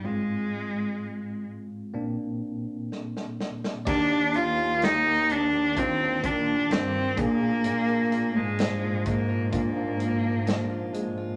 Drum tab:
CC |----------------|x---------------|----------------|
HH |----------------|--x-x-x-x-x-x-x-|x-x-x-x-x-x-x-x-|
SD |------------oooo|----o-------o---|----o-------o---|
BD |----------------|o-------o-o---o-|------o-o-------|